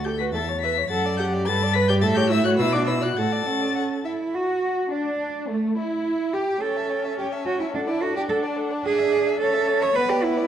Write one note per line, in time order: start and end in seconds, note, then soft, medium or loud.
0.00 0.34 D2 medium
0.04 0.10 G4 medium
0.04 0.21 A4 medium
0.04 0.18 G6 medium
0.18 0.34 F#4 medium
0.18 0.25 B4 medium
0.18 0.24 B6 medium
0.33 0.89 E2 medium
0.33 0.42 A4 medium
0.33 0.51 E5 medium
0.33 0.60 A6 medium
0.49 0.65 C#5 medium
0.60 0.71 B4 medium
0.60 0.79 E5 medium
0.60 0.89 B6 loud
0.78 0.91 C#5 medium
0.89 1.47 F#2 medium
0.89 1.21 A4 medium
0.89 1.07 F#5 medium
0.89 1.17 A6 loud
1.05 1.20 D5 medium
1.17 1.49 G4 medium
1.17 1.35 F#5 medium
1.17 1.25 G6 loud
1.34 1.47 D5 medium
1.46 2.03 G2 medium
1.46 1.77 A4 medium
1.46 1.65 B4 medium
1.46 1.75 A6 loud
1.63 1.77 D5 medium
1.73 1.90 B4 loud
1.73 1.91 B4 medium
1.73 1.88 B6 loud
1.88 2.04 G4 loud
1.88 2.02 D5 medium
1.88 1.94 G6 loud
2.01 2.60 A2 loud
2.01 2.18 A4 loud
2.01 2.18 E5 medium
2.01 2.07 A6 loud
2.15 2.32 G4 loud
2.15 2.34 C#5 medium
2.15 2.29 G6 loud
2.30 2.45 E4 loud
2.30 2.47 E5 medium
2.30 2.44 E6 loud
2.44 2.62 F#4 loud
2.44 2.59 C#5 medium
2.44 2.50 F#6 loud
2.58 3.17 B2 medium
2.58 2.76 E4 loud
2.58 2.75 B4 medium
2.58 2.74 E6 loud
2.72 2.91 D4 medium
2.72 2.89 D5 medium
2.72 2.86 D6 loud
2.87 3.05 E4 medium
2.87 3.03 B4 medium
2.87 3.04 E6 loud
3.01 3.20 F#4 medium
3.01 3.16 D5 medium
3.01 3.18 F#6 medium
3.16 3.46 A2 medium
3.16 4.07 A4 medium
3.16 3.34 F#5 medium
3.16 4.06 A6 loud
3.33 3.48 D5 medium
3.46 4.02 C#4 medium
3.46 3.63 F#5 medium
3.61 3.75 D5 medium
3.75 3.83 F#5 medium
4.05 4.36 E4 medium
4.05 4.13 E5 medium
4.35 4.88 F#4 medium
4.35 4.91 F#4 medium
4.35 4.93 F#4 medium
4.35 4.89 F#4 medium
4.91 5.49 D4 medium
4.91 5.48 D4 medium
4.91 5.50 D4 medium
5.48 5.77 A3 medium
5.48 5.76 A3 medium
5.48 5.78 A3 medium
5.48 5.77 A3 medium
5.76 6.33 E4 medium
5.76 6.35 E4 medium
5.76 6.36 E4 medium
6.33 6.63 G4 medium
6.33 6.61 G4 medium
6.33 6.42 G4 medium
6.33 6.62 G4 medium
6.61 7.76 C#4 medium
6.61 7.17 A4 medium
6.61 6.78 C#5 soft
6.61 6.78 G5 soft
6.76 6.91 E5 soft
6.76 6.92 A5 soft
6.89 7.06 C#5 soft
6.89 7.05 G5 soft
7.04 7.18 E5 soft
7.04 7.18 A5 soft
7.18 7.26 G4 medium
7.18 7.34 C#5 soft
7.18 7.34 G5 soft
7.32 7.47 E5 soft
7.32 7.47 A5 soft
7.46 7.59 F#4 medium
7.46 7.62 C#5 medium
7.46 7.62 G5 medium
7.60 7.66 E4 medium
7.60 7.73 E5 soft
7.60 7.75 A5 soft
7.74 7.80 D4 medium
7.74 9.42 D4 medium
7.74 7.89 A4 medium
7.74 7.91 F#5 medium
7.88 8.04 E4 medium
7.88 8.03 D5 medium
7.88 8.05 A5 soft
8.01 8.16 F#4 medium
8.01 8.16 A4 medium
8.01 8.19 F#5 medium
8.15 8.22 G4 medium
8.15 8.28 D5 medium
8.15 8.31 A5 medium
8.29 8.44 A4 medium
8.29 8.37 A4 medium
8.29 8.47 F#5 medium
8.43 8.58 D5 medium
8.43 8.60 A5 medium
8.57 8.72 A4 medium
8.57 8.74 F#5 medium
8.71 8.83 D5 medium
8.71 8.85 A5 medium
8.84 9.36 G#4 loud
8.84 9.00 D5 medium
8.84 9.01 E5 medium
8.98 9.14 D5 medium
8.98 9.14 E5 medium
9.12 9.28 D5 medium
9.12 9.27 E5 medium
9.26 9.40 D5 medium
9.26 9.41 E5 medium
9.40 9.95 C#4 medium
9.40 9.84 A4 loud
9.40 9.55 C#5 medium
9.40 9.57 E5 medium
9.54 9.70 C#5 medium
9.54 9.69 E5 medium
9.68 9.83 C#5 medium
9.68 9.84 E5 medium
9.81 9.97 C#5 loud
9.81 9.96 C#5 medium
9.81 9.94 E5 medium
9.95 10.47 B3 medium
9.95 10.10 B4 medium
9.95 10.11 B4 loud
9.95 10.12 F#5 medium
10.09 10.25 G4 loud
10.09 10.25 D5 medium
10.09 10.26 B5 medium
10.23 10.47 E4 loud
10.23 10.38 B4 medium
10.23 10.40 F#5 medium
10.37 10.47 D5 medium
10.37 10.47 B5 medium